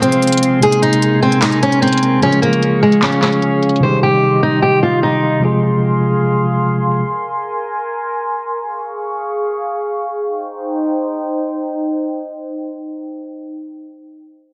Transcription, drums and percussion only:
0.03 closed hi-hat medium
0.12 closed hi-hat medium
0.22 closed hi-hat soft
0.27 closed hi-hat medium
0.32 closed hi-hat medium
0.38 closed hi-hat medium
0.43 closed hi-hat medium
0.63 closed hi-hat medium
0.72 closed hi-hat medium
0.83 closed hi-hat medium
0.93 closed hi-hat medium
1.02 closed hi-hat medium
1.32 closed hi-hat soft
1.42 snare loud
1.42 clap loud
1.42 closed hi-hat medium
1.52 closed hi-hat medium
1.63 closed hi-hat medium
1.72 closed hi-hat medium
1.83 closed hi-hat soft
1.88 closed hi-hat medium
1.93 closed hi-hat medium
1.98 closed hi-hat medium
2.03 closed hi-hat medium
2.23 closed hi-hat medium
2.33 closed hi-hat medium
2.43 closed hi-hat medium
2.53 closed hi-hat medium
2.63 closed hi-hat medium
2.92 closed hi-hat medium
3.02 snare loud
3.02 clap medium
3.02 closed hi-hat medium
3.12 closed hi-hat medium
3.22 snare medium
3.22 clap medium
3.22 closed hi-hat medium
3.32 closed hi-hat soft
3.42 closed hi-hat medium
3.63 closed hi-hat medium
3.69 closed hi-hat medium
3.76 closed hi-hat soft

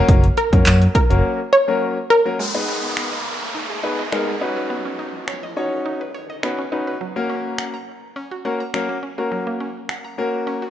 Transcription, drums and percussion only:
0.08 kick loud
0.08 closed hi-hat medium
0.24 closed hi-hat soft
0.37 closed hi-hat medium
0.53 kick loud
0.53 closed hi-hat medium
0.66 clap loud
0.66 closed hi-hat loud
0.66 tambourine medium
0.82 closed hi-hat medium
0.95 kick loud
0.95 closed hi-hat medium
1.11 closed hi-hat medium
2.97 finger snap loud
4.12 finger snap loud
5.28 finger snap loud
6.43 finger snap loud
7.58 finger snap loud
8.74 finger snap loud
9.89 finger snap loud

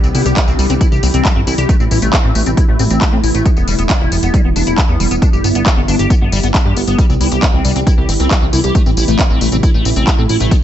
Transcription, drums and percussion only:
0.04 tambourine soft
0.15 open hi-hat loud
0.15 tambourine medium
0.26 closed hi-hat medium
0.26 tambourine soft
0.37 kick loud
0.37 clap loud
0.37 closed hi-hat medium
0.37 tambourine soft
0.48 tambourine soft
0.59 open hi-hat medium
0.59 tambourine medium
0.70 closed hi-hat medium
0.70 tambourine soft
0.81 kick loud
0.81 closed hi-hat medium
0.81 tambourine soft
0.92 tambourine soft
1.03 open hi-hat loud
1.03 tambourine medium
1.14 closed hi-hat medium
1.14 tambourine soft
1.25 kick loud
1.25 clap loud
1.25 closed hi-hat medium
1.25 tambourine soft
1.47 open hi-hat medium
1.47 tambourine medium
1.58 closed hi-hat medium
1.58 tambourine soft
1.69 kick loud
1.69 closed hi-hat medium
1.69 tambourine soft
1.80 tambourine soft
1.91 open hi-hat loud
1.91 tambourine medium
2.02 closed hi-hat medium
2.02 tambourine soft
2.13 kick loud
2.13 clap loud
2.13 closed hi-hat medium
2.13 tambourine soft
2.35 open hi-hat medium
2.35 tambourine medium
2.46 closed hi-hat medium
2.46 tambourine soft
2.57 kick loud
2.57 closed hi-hat medium
2.57 tambourine soft
2.79 open hi-hat loud
2.79 tambourine medium
2.90 closed hi-hat medium
2.90 tambourine soft
3.01 kick loud
3.01 clap loud
3.01 closed hi-hat medium
3.01 tambourine soft
3.24 open hi-hat medium
3.24 tambourine medium
3.35 closed hi-hat medium
3.35 tambourine soft
3.46 kick loud
3.46 closed hi-hat medium
3.46 tambourine soft
3.57 tambourine soft
3.68 open hi-hat loud
3.68 tambourine medium
3.79 closed hi-hat medium
3.79 tambourine soft
3.90 kick loud
3.90 clap loud
3.90 closed hi-hat medium
3.90 tambourine soft
4.12 open hi-hat medium
4.12 tambourine medium
4.23 closed hi-hat medium
4.23 tambourine soft
4.34 kick loud
4.34 closed hi-hat medium
4.34 tambourine soft
4.56 open hi-hat loud
4.56 tambourine medium
4.67 closed hi-hat medium
4.67 tambourine soft
4.78 kick loud
4.78 clap loud
4.78 closed hi-hat medium
4.78 tambourine soft
5.00 open hi-hat medium
5.00 tambourine medium
5.11 closed hi-hat medium
5.11 tambourine soft
5.22 kick loud
5.22 closed hi-hat medium
5.22 tambourine soft
5.33 tambourine soft
5.44 open hi-hat loud
5.44 tambourine medium
5.55 closed hi-hat medium
5.55 tambourine soft
5.66 kick loud
5.66 clap loud
5.66 closed hi-hat medium
5.66 tambourine soft
5.88 open hi-hat loud
5.88 tambourine medium
5.99 closed hi-hat medium
5.99 tambourine soft
6.10 kick loud
6.10 closed hi-hat medium
6.10 tambourine soft
6.32 open hi-hat loud
6.32 tambourine medium
6.43 closed hi-hat medium
6.43 tambourine soft
6.54 kick loud
6.54 clap loud
6.54 closed hi-hat medium
6.54 tambourine soft
6.77 open hi-hat loud
6.77 tambourine medium
6.88 closed hi-hat medium
6.88 tambourine soft
6.98 kick loud
6.98 closed hi-hat medium
6.98 tambourine soft
7.10 tambourine soft
7.21 open hi-hat loud
7.21 tambourine medium
7.32 closed hi-hat medium
7.32 tambourine soft
7.43 kick loud
7.43 clap loud
7.43 closed hi-hat medium
7.43 tambourine soft
7.65 open hi-hat loud
7.65 tambourine medium
7.76 closed hi-hat medium
7.76 tambourine soft
7.87 kick loud
7.87 closed hi-hat medium
7.87 tambourine soft
8.09 open hi-hat loud
8.09 tambourine medium
8.20 closed hi-hat medium
8.20 tambourine soft
8.31 kick loud
8.31 clap loud
8.31 closed hi-hat medium
8.31 tambourine soft
8.53 open hi-hat medium
8.53 tambourine medium
8.64 closed hi-hat medium
8.64 tambourine soft
8.75 kick loud
8.75 closed hi-hat medium
8.75 tambourine soft
8.86 tambourine soft
8.97 open hi-hat loud
8.97 tambourine medium
9.08 closed hi-hat medium
9.08 tambourine soft
9.19 kick loud
9.19 clap loud
9.19 closed hi-hat medium
9.19 tambourine soft
9.41 open hi-hat medium
9.41 tambourine medium
9.52 closed hi-hat medium
9.52 tambourine soft
9.63 kick loud
9.63 closed hi-hat medium
9.63 tambourine soft
9.85 open hi-hat loud
9.85 tambourine medium
9.96 closed hi-hat medium
9.96 tambourine soft
10.07 kick loud
10.07 clap loud
10.07 closed hi-hat medium
10.07 tambourine soft
10.29 open hi-hat loud
10.29 tambourine medium
10.40 closed hi-hat medium
10.40 tambourine soft
10.51 kick loud
10.51 closed hi-hat medium
10.51 tambourine soft

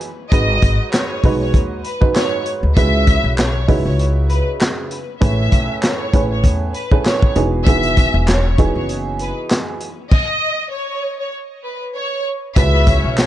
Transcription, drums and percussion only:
0.01 closed hi-hat medium
0.32 kick loud
0.32 closed hi-hat medium
0.62 kick medium
0.62 closed hi-hat medium
0.93 snare loud
0.93 clap loud
0.93 closed hi-hat medium
1.24 kick medium
1.24 open hi-hat soft
1.54 kick medium
1.54 closed hi-hat medium
1.85 closed hi-hat medium
2.02 kick medium
2.16 snare loud
2.16 clap medium
2.16 closed hi-hat medium
2.46 closed hi-hat medium
2.77 kick loud
2.77 closed hi-hat medium
3.07 kick medium
3.07 closed hi-hat medium
3.38 snare loud
3.38 clap loud
3.38 closed hi-hat medium
3.69 kick medium
3.69 open hi-hat soft
3.99 closed hi-hat medium
4.30 closed hi-hat medium
4.61 snare loud
4.61 clap medium
4.61 closed hi-hat medium
4.91 closed hi-hat medium
5.22 kick loud
5.22 closed hi-hat medium
5.52 kick medium
5.52 closed hi-hat medium
5.83 snare loud
5.83 clap loud
5.83 closed hi-hat medium
6.13 kick medium
6.13 closed hi-hat medium
6.44 kick medium
6.44 closed hi-hat medium
6.74 closed hi-hat medium
6.91 kick medium
7.06 snare loud
7.06 clap medium
7.06 closed hi-hat medium
7.22 kick medium
7.36 closed hi-hat medium
7.66 kick loud
7.66 closed hi-hat medium
7.83 closed hi-hat medium
7.97 kick medium
7.97 closed hi-hat medium
8.28 snare loud
8.28 clap loud
8.28 closed hi-hat medium
8.58 kick medium
8.58 closed hi-hat medium
8.89 closed hi-hat medium
9.19 closed hi-hat medium
9.51 snare loud
9.51 clap medium
9.51 closed hi-hat medium
9.81 closed hi-hat medium
10.12 kick loud
10.12 crash medium
12.56 kick loud
12.56 closed hi-hat loud
12.87 kick loud
12.87 closed hi-hat medium
13.18 snare loud
13.18 clap loud
13.18 closed hi-hat medium

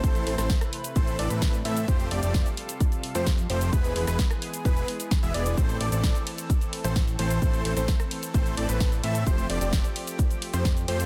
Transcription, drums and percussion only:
0.04 kick loud
0.04 closed hi-hat medium
0.04 shaker medium
0.15 closed hi-hat soft
0.15 shaker soft
0.27 open hi-hat loud
0.38 cross-stick medium
0.38 snare soft
0.38 closed hi-hat medium
0.38 shaker medium
0.50 kick loud
0.50 snare loud
0.50 closed hi-hat medium
0.50 shaker medium
0.61 cross-stick medium
0.61 closed hi-hat soft
0.61 shaker soft
0.73 open hi-hat loud
0.84 closed hi-hat medium
0.84 shaker medium
0.96 kick loud
0.96 closed hi-hat medium
0.96 shaker medium
1.07 closed hi-hat soft
1.07 shaker soft
1.19 open hi-hat loud
1.30 closed hi-hat medium
1.30 shaker medium
1.42 kick loud
1.42 snare loud
1.42 closed hi-hat medium
1.42 shaker medium
1.54 closed hi-hat soft
1.54 shaker soft
1.65 open hi-hat loud
1.77 closed hi-hat medium
1.77 shaker medium
1.88 kick loud
1.88 closed hi-hat medium
1.88 shaker medium
2.00 closed hi-hat soft
2.00 shaker soft
2.11 open hi-hat loud
2.23 closed hi-hat medium
2.23 shaker medium
2.34 kick loud
2.34 snare loud
2.34 closed hi-hat soft
2.34 shaker medium
2.46 closed hi-hat soft
2.46 shaker soft
2.57 open hi-hat loud
2.69 closed hi-hat medium
2.69 shaker medium
2.80 kick loud
2.80 closed hi-hat medium
2.80 shaker medium
2.92 closed hi-hat soft
2.92 shaker soft
3.03 open hi-hat loud
3.15 closed hi-hat medium
3.15 shaker medium
3.26 kick loud
3.26 snare loud
3.26 closed hi-hat soft
3.26 shaker medium
3.38 closed hi-hat soft
3.38 shaker soft
3.50 open hi-hat loud
3.61 closed hi-hat medium
3.61 shaker medium
3.73 kick loud
3.73 closed hi-hat medium
3.73 shaker medium
3.84 closed hi-hat soft
3.84 shaker soft
3.96 open hi-hat loud
4.07 cross-stick medium
4.07 snare soft
4.07 closed hi-hat medium
4.07 shaker medium
4.19 kick loud
4.19 snare loud
4.19 closed hi-hat soft
4.19 shaker medium
4.31 cross-stick medium
4.31 closed hi-hat soft
4.31 shaker soft
4.42 open hi-hat loud
4.54 closed hi-hat medium
4.54 shaker medium
4.65 kick loud
4.65 closed hi-hat medium
4.65 shaker medium
4.77 closed hi-hat soft
4.77 shaker soft
4.88 open hi-hat loud
5.00 closed hi-hat medium
5.00 shaker medium
5.11 kick loud
5.11 snare loud
5.11 closed hi-hat soft
5.11 shaker medium
5.23 closed hi-hat soft
5.23 shaker soft
5.34 open hi-hat loud
5.46 closed hi-hat soft
5.46 shaker medium
5.57 kick loud
5.57 closed hi-hat medium
5.57 shaker medium
5.69 closed hi-hat soft
5.69 shaker soft
5.81 open hi-hat loud
5.81 ride medium
5.92 closed hi-hat medium
5.92 shaker medium
6.04 kick loud
6.04 snare loud
6.04 closed hi-hat soft
6.04 shaker medium
6.15 closed hi-hat soft
6.15 shaker soft
6.27 open hi-hat loud
6.27 ride medium
6.38 closed hi-hat medium
6.38 shaker medium
6.50 kick loud
6.50 closed hi-hat medium
6.50 shaker medium
6.61 closed hi-hat soft
6.61 shaker soft
6.73 open hi-hat loud
6.73 ride medium
6.84 closed hi-hat soft
6.84 shaker medium
6.96 kick loud
6.96 snare loud
6.96 closed hi-hat soft
6.96 shaker medium
7.07 closed hi-hat soft
7.07 shaker soft
7.19 open hi-hat loud
7.19 ride medium
7.30 closed hi-hat medium
7.30 shaker medium
7.42 kick loud
7.42 closed hi-hat medium
7.42 shaker medium
7.54 closed hi-hat soft
7.54 shaker soft
7.65 open hi-hat loud
7.65 ride medium
7.77 cross-stick medium
7.77 snare soft
7.77 closed hi-hat medium
7.77 shaker medium
7.88 kick loud
7.88 snare loud
7.88 closed hi-hat medium
7.88 shaker medium
8.00 cross-stick medium
8.00 closed hi-hat soft
8.00 shaker soft
8.11 open hi-hat loud
8.11 ride medium
8.23 closed hi-hat medium
8.23 shaker medium
8.34 kick loud
8.34 closed hi-hat medium
8.34 shaker medium
8.46 closed hi-hat soft
8.46 shaker soft
8.57 open hi-hat loud
8.57 ride medium
8.69 closed hi-hat medium
8.69 shaker medium
8.80 kick loud
8.80 snare loud
8.80 closed hi-hat medium
8.80 shaker medium
8.92 closed hi-hat soft
8.92 shaker soft
9.04 open hi-hat loud
9.04 ride medium
9.15 closed hi-hat medium
9.15 shaker medium
9.27 kick loud
9.27 closed hi-hat medium
9.27 shaker medium
9.38 closed hi-hat soft
9.38 shaker soft
9.50 open hi-hat loud
9.50 ride medium
9.61 closed hi-hat medium
9.61 shaker medium
9.73 kick loud
9.73 snare loud
9.73 closed hi-hat medium
9.73 shaker medium
9.84 closed hi-hat soft
9.84 shaker soft
9.96 open hi-hat loud
9.96 ride medium
10.07 closed hi-hat medium
10.07 shaker medium
10.19 kick loud
10.19 closed hi-hat medium
10.19 shaker medium
10.31 closed hi-hat soft
10.31 shaker soft
10.42 open hi-hat loud
10.42 ride medium
10.54 closed hi-hat medium
10.54 shaker medium
10.65 kick loud
10.65 snare loud
10.65 closed hi-hat medium
10.65 shaker medium
10.77 closed hi-hat soft
10.77 shaker soft
10.88 open hi-hat loud
10.88 ride medium
11.00 closed hi-hat medium
11.00 shaker medium

